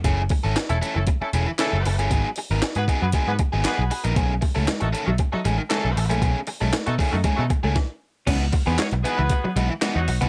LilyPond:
<<
  \new Staff \with { instrumentName = "Horn section" } { \time 4/4 \key cis \minor \tempo 4 = 117 r4 r16 <a cis' e' a'>16 r16 <a cis' e' a'>16 r16 <a cis' e' a'>16 r8 <a cis' e' a'>8. r16 | r4 r16 <b fis' gis' b'>16 r16 <b fis' gis' b'>16 r16 <b fis' gis' b'>16 r8 <b fis' gis' b'>8. r16 | r4 r16 <a dis' fis' a'>16 r16 <a dis' fis' a'>16 r16 <a dis' fis' a'>16 r8 <a dis' fis' a'>8. r16 | r4 r16 <a dis' fis' a'>16 r16 <a dis' fis' a'>16 r16 <a dis' fis' a'>16 r4. |
r8. <b fis' gis' b'>16 <cis' fis' gis' cis''>16 r16 <b fis' gis' b'>4 r8. <fis b dis' fis'>8 r16 | }
  \new Staff \with { instrumentName = "Overdriven electric guitar" } { \time 4/4 \key cis \minor <e a cis' gis'>16 r8 <e a cis' a'>16 r8 <e a cis' a'>16 r8. <e a cis' gis'>16 r16 <e a cis' gis'>16 r8 <e a cis' gis'>16 | <fis b dis' gis'>16 r8 <fis b dis' ais'>16 r8 <fis b dis' gis'>16 r16 <fis b dis' gis'>16 r8 <fis b dis' gis'>16 <fis b dis' gis'>16 r8 <fis b dis' ais'>16 | <dis a cis' gis'>16 r8 <dis a cis' a'>16 r8 <dis a cis' a'>16 r8. <dis a cis' gis'>16 r16 <dis a cis' gis'>16 r8 <dis a cis' gis'>16 | <dis a cis' gis'>16 r8 <dis a cis' a'>16 r8 <dis a cis' gis'>16 r16 <dis a cis' gis'>16 r8 <dis a cis' gis'>16 r4 |
<e b dis' fis'>16 r8 <e b dis' gis'>16 r8 <e b dis' gis'>16 r8. <e b dis' fis'>16 r16 <e b dis' fis'>16 r8 <e b dis' fis'>16 | }
  \new Staff \with { instrumentName = "Clean electric guitar" } { \clef bass \time 4/4 \key cis \minor r1 | r1 | b16 r8 a16 gis16 r8 fis16 r16 fis16 gis16 r16 gis16 r8 a16 | b16 r8 gis16 a16 r8 a16 gis16 r8 a16 r4 |
cis'16 r8 b16 gis16 r8 e16 r16 fis16 gis16 r16 gis16 r8 b16 | }
  \new Staff \with { instrumentName = "Picked electric bass" } { \clef bass \time 4/4 \key cis \minor fis,,8 r16 gis,,16 r16 e,,16 r16 fis,,16 r8 e,,16 r8 fis,,16 fis,,16 g,,16 | gis,,16 r8 gis,,16 r16 gis,16 r16 fis,16 r16 gis,16 r16 gis,,16 r16 b,,16 r16 ais,,16 | b,,8 r16 cis,16 r16 a,,16 r16 b,,16 r8 a,,16 r8 b,,16 a,,16 ais,,16 | b,,16 r8 b,,16 r16 b,16 r16 fis,16 r16 b,16 r16 cis,16 r4 |
cis,8 r16 e,16 r16 b,,16 r16 cis,16 r8 b,,16 r8 e,16 b,,16 bis,,16 | }
  \new DrumStaff \with { instrumentName = "Drums" } \drummode { \time 4/4 <hh bd>8 <hho bd>8 <hc hh sn>16 hh16 hh8 <hh bd>8 hh8 <hc hh sn>8 hho16 hh16 | <hh bd>8 hho8 <hc hh sn>16 hh16 <hh bd>8 <hh bd>8 <hh bd>8 <hc hh sn>8 hho16 hh16 | <hh bd>8 <hho bd>8 <hc hh sn>16 hh16 hh8 <hh bd>8 hh8 <hc hh sn>8 hho16 hh16 | <hh bd>8 hho8 <hc hh sn>16 hh16 <hho bd>8 <hh bd>8 <hh bd>8 <bd sn>4 |
<cymc hh bd>8 <hho bd>8 <hc hh sn>16 hh16 hh8 <hh bd>8 hh8 <hc hh sn>8 hho16 hh16 | }
>>